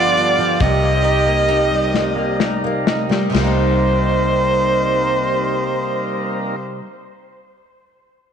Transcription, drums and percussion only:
0.17 closed hi-hat
0.60 kick, closed hi-hat
1.04 closed hi-hat
1.49 closed hi-hat
1.94 snare
2.40 snare
2.87 snare
3.11 snare
3.34 snare, crash

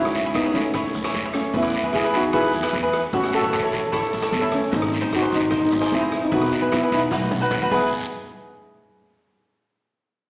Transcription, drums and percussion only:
0.05 cross-stick
0.15 closed hi-hat, short guiro
0.25 closed hi-hat
0.34 kick, cross-stick, closed hi-hat, short guiro
0.55 closed hi-hat, short guiro
0.65 closed hi-hat
0.74 kick, cross-stick, long guiro
0.94 closed hi-hat
1.04 cross-stick, closed hi-hat
1.14 kick, closed hi-hat, short guiro
1.34 cross-stick, closed hi-hat
1.44 closed hi-hat
1.53 kick, closed hi-hat, long guiro
1.63 cross-stick
1.73 closed hi-hat, short guiro
1.83 closed hi-hat
1.93 kick, cross-stick, closed hi-hat, short guiro
2.14 closed hi-hat, short guiro
2.23 closed hi-hat
2.33 kick, cross-stick, closed hi-hat, long guiro
2.53 closed hi-hat
2.63 cross-stick, closed hi-hat
2.73 kick, closed hi-hat, short guiro
2.93 cross-stick, closed hi-hat
3.04 closed hi-hat
3.13 kick, closed hi-hat, long guiro
3.24 cross-stick
3.33 closed hi-hat, short guiro
3.43 closed hi-hat
3.53 kick, cross-stick, closed hi-hat, short guiro
3.72 closed hi-hat, short guiro
3.83 closed hi-hat
3.93 kick, cross-stick, closed hi-hat, long guiro
4.13 closed hi-hat
4.23 cross-stick, closed hi-hat
4.33 kick, closed hi-hat, short guiro
4.52 cross-stick, closed hi-hat
4.62 closed hi-hat
4.72 kick, closed hi-hat, long guiro
4.82 cross-stick
4.93 closed hi-hat, short guiro
5.02 closed hi-hat
5.12 kick, cross-stick, closed hi-hat, short guiro
5.32 closed hi-hat, short guiro
5.42 closed hi-hat
5.51 kick, cross-stick, closed hi-hat, long guiro
5.71 closed hi-hat
5.82 cross-stick, closed hi-hat
5.92 kick, closed hi-hat, short guiro
6.12 cross-stick, closed hi-hat
6.22 closed hi-hat
6.31 kick, closed hi-hat, long guiro
6.42 cross-stick
6.52 closed hi-hat, short guiro
6.63 closed hi-hat
6.72 kick, cross-stick, closed hi-hat, short guiro
6.92 closed hi-hat, short guiro
7.02 closed hi-hat
7.11 kick, snare, long guiro
7.31 high tom
7.51 kick, mid tom, short guiro
7.71 kick, crash, long guiro

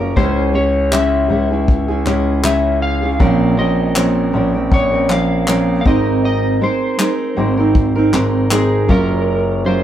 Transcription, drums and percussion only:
0.17 kick
0.93 clap
1.68 kick
2.06 clap
2.44 clap
3.20 kick
3.96 clap
4.72 kick
5.10 clap
5.48 clap
5.86 kick
6.99 clap
7.75 kick
8.14 clap
8.51 clap
8.89 kick

